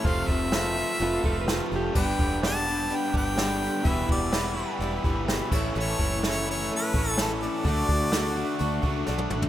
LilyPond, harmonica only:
\new Staff \with { instrumentName = "Harmonica" } { \time 4/4 \key e \dorian \tempo 4 = 126 f''8 e''2. r8 | g''4 a''4 g''8 g''4. | e''8 d''4. r2 | cis''4 cis''8 cis''8 b'4 a'8 d''8~ |
d''2. r4 | }